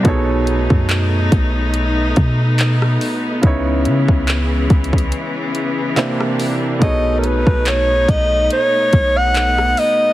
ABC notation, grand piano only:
X:1
M:4/4
L:1/8
Q:"Swing 16ths" 1/4=71
K:Bmix
V:1 name="Grand piano"
[B,,B,DGAc]8 | [C,B,DEc]6 [=C,_B,=DE=c]2 | [B,,B,DGAc]8 |]